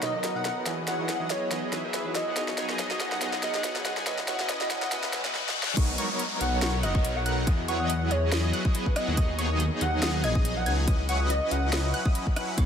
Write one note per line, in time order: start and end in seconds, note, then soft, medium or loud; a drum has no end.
0.00 0.22 F#1 medium
0.00 0.11 B2 medium
0.00 0.12 F#3 medium
0.00 0.12 A#3 medium
0.00 0.12 B3 medium
0.00 0.12 D#4 medium
0.00 0.12 A#4 medium
0.00 0.19 D#5 medium
0.00 0.12 D#5 medium
0.00 snare medium
0.00 closed hi-hat medium
0.00 riser medium
0.14 0.54 F#3 medium
0.14 0.54 B3 medium
0.14 0.54 D#4 medium
0.14 0.54 A#4 medium
0.14 0.54 D#5 medium
0.24 0.65 B1 medium
0.24 snare medium
0.24 closed hi-hat medium
0.34 0.48 B2 medium
0.34 0.48 A#3 medium
0.34 0.49 D#4 medium
0.34 0.41 F#5 medium
0.34 0.49 F#5 medium
0.45 0.52 F#5 medium
0.45 snare medium
0.45 closed hi-hat medium
0.56 0.65 F#3 medium
0.56 0.65 B3 medium
0.56 0.65 D#4 medium
0.56 0.65 A#4 medium
0.56 0.65 F#5 medium
0.65 1.29 E2 medium
0.65 0.96 E3 medium
0.65 0.79 F#3 medium
0.65 0.79 B3 medium
0.65 0.96 D#4 medium
0.65 0.79 E4 medium
0.65 0.96 F#4 medium
0.65 0.79 G#4 medium
0.65 0.97 G#4 medium
0.65 0.79 D#5 medium
0.65 snare medium
0.65 closed hi-hat medium
0.87 0.96 F#3 medium
0.87 0.96 B3 medium
0.87 0.96 E4 medium
0.87 0.96 G#4 medium
0.87 0.96 C#5 loud
0.87 1.07 F#5 medium
0.87 snare medium
0.87 closed hi-hat medium
0.98 1.07 E3 medium
0.98 1.49 F#3 loud
0.98 1.49 B3 medium
0.98 1.07 D#4 medium
0.98 1.49 E4 medium
0.98 1.07 F#4 medium
0.98 1.49 G#4 medium
0.98 1.08 B4 medium
0.98 1.49 D#5 loud
1.09 1.28 F#5 loud
1.09 snare medium
1.09 closed hi-hat medium
1.19 1.28 E3 medium
1.19 1.28 D#4 medium
1.19 1.28 F#4 medium
1.19 1.29 G#4 loud
1.30 1.71 E2 medium
1.30 1.47 C#5 medium
1.30 snare medium
1.30 closed hi-hat medium
1.50 1.60 E3 medium
1.50 1.71 F#3 loud
1.50 1.71 B3 medium
1.50 1.61 D#4 medium
1.50 1.71 E4 medium
1.50 1.61 F#4 medium
1.50 1.71 G#4 medium
1.50 1.61 G#4 medium
1.50 1.71 D#5 loud
1.50 snare medium
1.50 closed hi-hat medium
1.72 1.82 E3 medium
1.72 1.82 F#3 medium
1.72 1.82 B3 medium
1.72 1.82 D#4 medium
1.72 1.82 E4 medium
1.72 1.82 F#4 medium
1.72 1.82 G#4 medium
1.72 1.83 B4 medium
1.72 1.82 E5 medium
1.72 snare medium
1.72 closed hi-hat medium
1.84 2.24 F#3 medium
1.84 2.24 B3 medium
1.84 2.24 E4 medium
1.84 2.24 G#4 medium
1.84 2.24 E5 medium
1.94 2.11 B4 medium
1.94 snare medium
1.94 closed hi-hat medium
2.04 2.18 E3 medium
2.04 2.19 D#4 medium
2.04 2.19 F#4 medium
2.04 2.19 C#5 medium
2.15 2.41 D#5 medium
2.15 snare medium
2.15 closed hi-hat medium
2.27 2.89 D#2 loud
2.27 2.35 F#3 medium
2.27 2.35 B3 medium
2.27 2.35 E4 medium
2.27 2.35 G#4 medium
2.27 2.35 F#5 medium
2.35 2.49 F#3 medium
2.35 2.66 B3 medium
2.35 2.49 B3 medium
2.35 2.49 D#4 medium
2.35 2.66 F#4 medium
2.35 2.49 G#4 medium
2.35 2.67 G#4 medium
2.35 2.49 D#5 medium
2.35 snare loud
2.35 closed hi-hat medium
2.48 snare medium
2.58 2.67 F#3 medium
2.58 2.67 B3 medium
2.58 2.67 D#4 medium
2.58 2.67 G#4 medium
2.58 2.67 C#5 loud
2.58 snare medium
2.58 closed hi-hat medium
2.68 3.19 F#3 loud
2.68 2.77 B3 medium
2.68 3.19 B3 medium
2.68 3.19 D#4 medium
2.68 2.77 F#4 medium
2.68 3.19 G#4 medium
2.68 2.78 A#4 loud
2.68 3.19 D#5 loud
2.68 snare medium
2.79 snare medium
2.79 closed hi-hat medium
2.90 2.98 B3 loud
2.90 2.99 F#4 medium
2.90 2.99 G#4 loud
2.90 snare medium
3.00 3.44 D#2 medium
3.00 3.41 F#5 medium
3.00 snare medium
3.00 closed hi-hat medium
3.12 snare medium
3.20 3.41 F#3 loud
3.20 3.31 B3 medium
3.20 3.41 B3 medium
3.20 3.41 D#4 medium
3.20 3.31 F#4 medium
3.20 3.41 G#4 medium
3.20 3.32 G#4 medium
3.20 3.41 D#5 loud
3.20 snare loud
3.20 closed hi-hat medium
3.33 snare medium
3.42 3.87 A#1 medium
3.42 3.53 F#3 medium
3.42 3.52 B3 medium
3.42 3.53 B3 medium
3.42 3.53 D#4 medium
3.42 3.52 F#4 medium
3.42 3.53 G#4 medium
3.42 3.53 A#4 medium
3.42 3.60 D#5 medium
3.42 3.53 F#5 medium
3.42 snare medium
3.42 closed hi-hat medium
3.54 3.94 F#3 medium
3.54 3.94 B3 medium
3.54 3.94 D#4 medium
3.54 3.94 G#4 medium
3.54 3.94 F#5 medium
3.54 snare medium
3.64 snare loud
3.64 closed hi-hat medium
3.75 3.89 B3 medium
3.75 3.89 F#4 medium
3.75 3.90 B4 medium
3.75 3.82 F#5 medium
3.75 snare medium
3.85 4.59 C#2 loud
3.85 3.93 F#5 medium
3.85 snare loud
3.85 closed hi-hat medium
3.97 4.05 F#3 medium
3.97 4.05 B3 medium
3.97 4.05 D#4 medium
3.97 4.05 G#4 medium
3.97 4.05 G#5 medium
3.97 snare medium
4.06 4.36 C#3 medium
4.06 4.19 F#3 medium
4.06 4.36 B3 medium
4.06 4.19 C#4 medium
4.06 4.37 E4 medium
4.06 4.19 E4 medium
4.06 4.37 F#4 medium
4.06 4.19 B4 medium
4.06 4.19 D#5 medium
4.06 4.37 D#5 loud
4.06 snare loud
4.06 closed hi-hat medium
4.18 snare medium
4.28 4.37 F#3 medium
4.28 4.37 C#4 medium
4.28 4.37 E4 medium
4.28 4.37 B4 medium
4.28 4.37 C#5 loud
4.28 4.47 F#5 medium
4.28 snare loud
4.28 closed hi-hat medium
4.38 4.47 C#3 medium
4.38 4.89 F#3 loud
4.38 4.47 B3 medium
4.38 4.89 C#4 medium
4.38 4.47 E4 medium
4.38 4.89 E4 medium
4.38 4.48 F#4 medium
4.38 4.89 B4 medium
4.38 4.89 D#5 loud
4.38 4.48 E5 medium
4.38 snare medium
4.49 4.66 D#5 loud
4.49 snare loud
4.49 closed hi-hat medium
4.60 4.68 C#3 loud
4.60 4.69 B3 medium
4.60 4.69 E4 medium
4.60 4.69 F#4 medium
4.60 4.69 D#5 loud
4.60 snare medium
4.70 5.34 C#2 medium
4.70 5.13 F#5 loud
4.70 snare loud
4.70 closed hi-hat medium
4.82 snare medium
4.91 5.01 C#3 medium
4.91 5.11 F#3 loud
4.91 5.01 B3 medium
4.91 5.11 C#4 medium
4.91 5.11 E4 medium
4.91 5.01 E4 medium
4.91 5.02 F#4 medium
4.91 5.11 B4 medium
4.91 5.11 D#5 loud
4.91 5.02 D#5 medium
4.91 snare loud
4.91 closed hi-hat medium
4.91 reverse cymbal medium
5.03 snare loud
5.13 5.22 F#3 medium
5.13 5.22 C#4 medium
5.13 5.22 E4 medium
5.13 5.22 B4 medium
5.13 5.22 F#5 loud
5.13 snare loud
5.13 closed hi-hat medium
5.24 5.32 C#3 medium
5.24 5.34 F#3 medium
5.24 5.32 B3 medium
5.24 5.34 C#4 medium
5.24 5.34 E4 medium
5.24 5.32 E4 medium
5.24 5.32 F#4 medium
5.24 5.34 B4 medium
5.24 5.33 C#5 medium
5.24 5.34 D#5 loud
5.24 snare medium
5.34 snare medium
5.49 snare medium
5.63 snare loud
5.77 5.97 B1 loud
5.77 5.90 F#3 medium
5.77 5.90 B3 medium
5.77 5.90 D#4 medium
5.77 5.90 A#4 medium
5.77 5.90 C#5 medium
5.77 5.90 C#6 medium
5.77 kick loud
5.77 closed hi-hat medium
5.77 crash loud
5.77 downlifter medium
5.98 6.07 F#3 medium
5.98 6.07 B3 medium
5.98 6.07 D#4 medium
5.98 6.07 A#4 medium
5.98 6.07 C#5 loud
5.98 6.07 C#6 loud
5.98 closed hi-hat medium
6.10 6.60 F#3 loud
6.10 6.60 B3 medium
6.10 6.60 D#4 medium
6.10 6.60 A#4 medium
6.10 6.60 C#5 loud
6.10 6.60 C#6 loud
6.19 closed hi-hat medium
6.41 6.85 B1 medium
6.41 6.81 F#5 medium
6.41 closed hi-hat medium
6.62 6.81 F#3 loud
6.62 6.81 B3 medium
6.62 6.81 D#4 medium
6.62 6.81 A#4 medium
6.62 6.81 C#5 loud
6.62 6.81 C#6 loud
6.62 snare loud
6.62 closed hi-hat medium
6.83 7.03 F#1 medium
6.83 6.92 F#3 medium
6.83 6.92 B3 medium
6.83 6.92 D#4 medium
6.83 6.92 A#4 medium
6.83 7.00 D#5 medium
6.83 6.92 F#5 loud
6.83 6.92 F#6 loud
6.83 cross-stick medium
6.83 closed hi-hat medium
6.95 7.14 F#3 medium
6.95 7.14 B3 medium
6.95 7.14 D#4 medium
6.95 7.14 A#4 medium
6.95 7.14 C#5 loud
6.95 7.14 C#6 loud
6.95 kick loud
7.05 7.49 B1 medium
7.05 closed hi-hat medium
7.16 7.22 F#5 medium
7.26 7.44 F#3 medium
7.26 7.44 B3 medium
7.26 7.44 D#4 medium
7.26 7.44 A#4 medium
7.26 7.33 F#5 medium
7.26 7.44 F#5 medium
7.26 7.44 F#6 medium
7.26 closed hi-hat medium
7.47 8.10 E2 medium
7.47 7.60 F#3 medium
7.47 7.60 B3 medium
7.47 7.60 E4 medium
7.47 7.60 G#4 medium
7.47 7.60 D#5 medium
7.47 7.60 D#6 medium
7.47 kick loud
7.47 closed hi-hat medium
7.68 7.77 F#3 medium
7.68 7.77 B3 medium
7.68 7.77 E4 medium
7.68 7.77 G#4 medium
7.68 7.77 C#5 loud
7.68 7.88 F#5 medium
7.68 7.77 C#6 loud
7.68 closed hi-hat medium
7.80 8.30 F#3 loud
7.80 8.30 B3 medium
7.80 8.30 E4 medium
7.80 8.30 G#4 medium
7.80 8.30 D#5 loud
7.80 8.30 D#6 loud
7.90 8.09 F#5 medium
7.90 closed hi-hat medium
8.11 8.52 E2 medium
8.11 8.28 C#5 loud
8.11 closed hi-hat medium
8.32 8.52 F#3 loud
8.32 8.52 B3 medium
8.32 8.52 E4 medium
8.32 8.52 G#4 medium
8.32 8.52 D#5 loud
8.32 8.52 D#6 loud
8.32 snare loud
8.32 closed hi-hat medium
8.53 8.62 F#3 medium
8.53 8.62 B3 medium
8.53 8.62 E4 medium
8.53 8.62 G#4 medium
8.53 8.62 F#5 loud
8.53 8.62 F#6 loud
8.53 closed hi-hat medium
8.65 8.84 F#3 medium
8.65 8.84 B3 medium
8.65 8.84 E4 medium
8.65 8.84 G#4 medium
8.65 8.84 D#5 loud
8.65 8.84 D#6 loud
8.65 kick loud
8.75 8.92 B4 loud
8.75 closed hi-hat medium
8.86 kick medium
8.96 9.14 F#3 medium
8.96 9.14 B3 medium
8.96 9.14 E4 medium
8.96 9.14 G#4 medium
8.96 9.22 D#5 medium
8.96 9.14 F#5 medium
8.96 9.14 F#6 medium
8.96 cross-stick medium
8.96 closed hi-hat medium
9.08 9.70 D#2 loud
9.17 9.30 F#3 medium
9.17 9.30 B3 medium
9.17 9.30 D#4 medium
9.17 9.30 G#4 medium
9.17 9.30 D#5 medium
9.17 9.30 D#6 medium
9.17 kick loud
9.17 closed hi-hat medium
9.39 9.47 F#3 medium
9.39 9.47 B3 medium
9.39 9.47 D#4 medium
9.39 9.47 G#4 medium
9.39 9.47 C#5 loud
9.39 9.47 C#6 loud
9.39 closed hi-hat medium
9.50 10.00 F#3 loud
9.50 10.00 B3 medium
9.50 10.00 D#4 medium
9.50 10.00 G#4 medium
9.50 10.00 D#5 loud
9.50 10.00 D#6 loud
9.60 closed hi-hat medium
9.81 10.25 D#2 medium
9.81 10.22 F#5 loud
9.81 closed hi-hat medium
10.02 10.22 F#3 medium
10.02 10.22 B3 medium
10.02 10.22 D#4 medium
10.02 10.22 G#4 medium
10.02 10.22 D#5 loud
10.02 10.22 D#6 loud
10.02 snare loud
10.02 closed hi-hat medium
10.24 10.68 A#1 medium
10.24 10.32 F#3 medium
10.24 10.32 B3 medium
10.24 10.32 D#4 medium
10.24 10.32 G#4 medium
10.24 10.40 D#5 medium
10.24 10.32 G#5 loud
10.24 10.32 G#6 loud
10.24 cross-stick medium
10.24 closed hi-hat medium
10.35 10.54 F#3 medium
10.35 10.54 B3 medium
10.35 10.54 D#4 medium
10.35 10.54 G#4 medium
10.35 10.54 D#5 loud
10.35 10.54 D#6 loud
10.35 kick loud
10.45 closed hi-hat medium
10.57 10.63 F#5 medium
10.66 11.40 C#2 loud
10.66 10.85 F#3 medium
10.66 10.85 B3 medium
10.66 10.85 D#4 medium
10.66 10.85 G#4 medium
10.66 10.74 F#5 medium
10.66 10.85 G#5 medium
10.66 10.85 G#6 medium
10.66 closed hi-hat medium
10.88 11.00 F#3 medium
10.88 11.00 C#4 medium
10.88 11.00 E4 medium
10.88 11.00 B4 medium
10.88 11.00 D#5 medium
10.88 11.00 D#6 medium
10.88 kick loud
10.88 closed hi-hat medium
11.09 11.18 F#3 medium
11.09 11.18 C#4 medium
11.09 11.18 E4 medium
11.09 11.18 B4 medium
11.09 11.18 C#5 loud
11.09 11.28 F#5 medium
11.09 11.18 C#6 loud
11.09 closed hi-hat medium
11.20 11.70 F#3 loud
11.20 11.70 C#4 medium
11.20 11.70 E4 medium
11.20 11.70 B4 medium
11.20 11.70 D#5 loud
11.20 11.70 D#6 loud
11.30 11.47 D#5 loud
11.30 closed hi-hat medium
11.51 11.93 C#2 medium
11.51 11.94 F#5 medium
11.51 closed hi-hat medium
11.73 11.92 F#3 loud
11.73 11.92 C#4 medium
11.73 11.92 E4 medium
11.73 11.92 B4 medium
11.73 11.92 D#5 loud
11.73 11.92 D#6 loud
11.73 snare loud
11.73 closed hi-hat medium
11.94 12.03 F#3 medium
11.94 12.03 C#4 medium
11.94 12.03 E4 medium
11.94 12.03 B4 medium
11.94 12.03 F#5 loud
11.94 12.03 F#6 loud
11.94 closed hi-hat medium
12.05 12.24 F#3 medium
12.05 12.24 C#4 medium
12.05 12.24 E4 medium
12.05 12.24 B4 medium
12.05 12.24 D#5 loud
12.05 12.24 D#6 loud
12.05 kick loud
12.15 closed hi-hat medium
12.27 kick medium
12.36 12.55 F#3 medium
12.36 12.55 C#4 medium
12.36 12.55 E4 medium
12.36 12.55 B4 medium
12.36 12.55 F#5 medium
12.36 12.55 F#6 medium
12.36 cross-stick medium
12.36 closed hi-hat medium
12.57 12.66 B1 loud
12.57 12.66 B2 medium
12.57 12.66 F#3 medium
12.57 12.66 A#3 medium
12.57 12.66 B3 medium
12.57 12.66 D#4 medium
12.57 12.66 A#4 medium
12.57 12.66 C#5 medium
12.57 12.66 C#5 loud
12.57 12.66 C#6 medium
12.57 kick loud
12.57 closed hi-hat medium